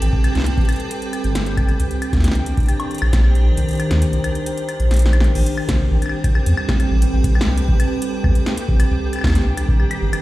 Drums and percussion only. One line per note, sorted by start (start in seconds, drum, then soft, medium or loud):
0.02 closed hi-hat medium
0.13 kick loud
0.24 closed hi-hat medium
0.24 high woodblock medium
0.35 snare soft
0.35 closed hi-hat soft
0.37 snare medium
0.40 snare medium
0.42 snare medium
0.44 snare medium
0.44 closed hi-hat medium
0.57 kick loud
0.57 closed hi-hat soft
0.61 closed hi-hat soft
0.65 closed hi-hat soft
0.69 closed hi-hat medium
0.69 high woodblock soft
0.72 closed hi-hat soft
0.76 closed hi-hat soft
0.80 closed hi-hat soft
0.91 closed hi-hat medium
1.02 closed hi-hat soft
1.13 closed hi-hat medium
1.13 high woodblock soft
1.24 closed hi-hat soft
1.35 snare loud
1.35 closed hi-hat medium
1.46 closed hi-hat soft
1.57 kick loud
1.57 closed hi-hat soft
1.57 high woodblock medium
1.69 closed hi-hat soft
1.69 high woodblock soft
1.80 closed hi-hat medium
1.91 closed hi-hat soft
2.02 closed hi-hat medium
2.02 high woodblock medium
2.13 kick loud
2.13 snare soft
2.13 closed hi-hat soft
2.17 snare medium
2.20 snare medium
2.24 snare medium
2.24 closed hi-hat medium
2.28 snare medium
2.31 snare medium
2.31 closed hi-hat soft
2.46 closed hi-hat medium
2.57 kick loud
2.57 closed hi-hat soft
2.60 closed hi-hat soft
2.63 closed hi-hat soft
2.66 closed hi-hat soft
2.69 closed hi-hat medium
2.69 high woodblock soft
2.80 closed hi-hat soft
2.80 high woodblock medium
2.91 closed hi-hat soft
2.95 closed hi-hat soft
2.98 closed hi-hat soft
2.98 high woodblock medium
3.13 kick loud
3.13 snare loud
3.13 closed hi-hat medium
3.24 high woodblock soft
3.35 closed hi-hat soft
3.57 closed hi-hat medium
3.69 closed hi-hat soft
3.71 closed hi-hat soft
3.73 closed hi-hat soft
3.75 closed hi-hat soft
3.77 closed hi-hat soft
3.80 closed hi-hat medium
3.80 high woodblock medium
3.91 snare loud
3.91 closed hi-hat soft
4.02 closed hi-hat medium
4.13 closed hi-hat soft
4.24 closed hi-hat medium
4.24 high woodblock medium
4.35 closed hi-hat soft
4.46 closed hi-hat medium
4.58 closed hi-hat soft
4.69 closed hi-hat medium
4.69 high woodblock soft
4.80 closed hi-hat soft
4.91 snare medium
4.91 closed hi-hat soft
4.94 closed hi-hat medium
4.96 closed hi-hat medium
4.99 closed hi-hat medium
5.02 snare medium
5.02 closed hi-hat soft
5.13 closed hi-hat soft
5.13 high woodblock medium
5.20 snare medium
5.20 closed hi-hat soft
5.35 crash loud
5.46 closed hi-hat medium
5.58 high woodblock medium
5.69 kick loud
5.69 snare loud
5.69 closed hi-hat loud
6.02 closed hi-hat medium
6.02 high woodblock soft
6.06 high woodblock soft
6.09 high woodblock soft
6.24 kick loud
6.24 closed hi-hat medium
6.24 high woodblock soft
6.35 high woodblock medium
6.46 closed hi-hat loud
6.57 high woodblock medium
6.69 kick loud
6.69 snare loud
6.80 closed hi-hat medium
6.80 high woodblock soft
7.02 closed hi-hat medium
7.24 kick loud
7.24 closed hi-hat loud
7.35 high woodblock medium
7.41 snare loud
7.58 closed hi-hat medium
7.69 kick loud
7.80 closed hi-hat medium
7.80 high woodblock medium
8.02 closed hi-hat loud
8.24 kick loud
8.24 high woodblock soft
8.35 closed hi-hat medium
8.46 snare loud
8.57 closed hi-hat medium
8.69 kick loud
8.80 closed hi-hat loud
8.80 high woodblock medium
9.13 closed hi-hat medium
9.13 high woodblock soft
9.16 high woodblock soft
9.19 high woodblock soft
9.21 kick loud
9.21 snare loud
9.21 high woodblock soft
9.24 snare loud
9.24 high woodblock soft
9.27 snare medium
9.27 high woodblock soft
9.30 snare medium
9.30 high woodblock soft
9.32 snare medium
9.32 closed hi-hat medium
9.32 high woodblock soft
9.38 snare soft
9.41 snare soft
9.44 snare soft
9.57 closed hi-hat medium
9.57 high woodblock medium
9.69 kick loud
9.80 high woodblock soft
9.91 closed hi-hat medium
9.91 high woodblock medium
10.13 closed hi-hat medium
10.13 high woodblock medium